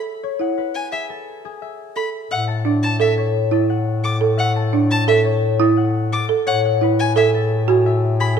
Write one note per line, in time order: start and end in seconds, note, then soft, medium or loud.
0.00 0.91 G#4 soft
0.00 0.10 A4 soft
0.00 1.08 A4 soft
0.00 0.56 B4 medium
0.00 0.22 C#5 medium
0.00 1.61 E5 soft
0.00 0.39 F#5 medium
0.00 0.13 A5 medium
0.23 3.16 C#5 medium
0.39 0.62 E4 soft
0.39 3.68 F#5 soft
0.58 2.32 B4 soft
0.75 0.88 G#5 medium
0.92 1.44 G#4 soft
0.92 1.05 E5 soft
1.09 2.98 A4 soft
1.45 2.33 G#4 soft
1.62 2.30 E5 soft
1.96 2.19 A4 soft
1.96 2.09 B5 soft
2.31 6.36 A2 medium
2.31 4.36 E5 medium
2.31 2.44 F#5 medium
2.48 4.55 A5 medium
2.65 2.88 D4 medium
2.65 4.71 D5 medium
2.83 2.96 A5 medium
3.00 3.51 A4 soft
3.00 3.23 A4 medium
3.00 3.13 E5 medium
3.17 5.24 C#5 soft
3.51 3.74 E4 medium
3.51 4.03 A4 medium
3.70 5.76 F#5 soft
4.04 5.06 A4 medium
4.04 4.17 D6 soft
4.21 4.44 A4 medium
4.38 7.85 E5 medium
4.38 4.52 F#5 medium
4.56 8.39 A5 medium
4.72 4.96 D4 medium
4.72 6.48 D5 medium
4.91 5.04 A5 medium
5.07 5.58 A4 medium
5.07 5.31 A4 medium
5.07 5.21 E5 medium
5.25 6.45 C#5 medium
5.60 5.83 E4 medium
5.60 6.11 A4 medium
5.77 6.48 F#5 medium
6.12 7.33 A4 medium
6.12 6.25 D6 soft
6.29 6.52 A4 medium
6.47 8.39 A2 medium
6.47 8.39 C#5 medium
6.47 6.60 F#5 medium
6.65 8.39 F#5 medium
6.81 7.04 E4 medium
6.81 8.39 B4 medium
6.99 7.12 G#5 medium
7.16 7.68 G#4 medium
7.16 7.39 A4 medium
7.16 7.29 E5 medium
7.34 8.36 A4 medium
7.68 7.91 F#4 medium
7.68 8.19 G#4 medium
7.86 8.39 E5 medium
8.20 8.39 G#4 medium
8.20 8.33 B5 medium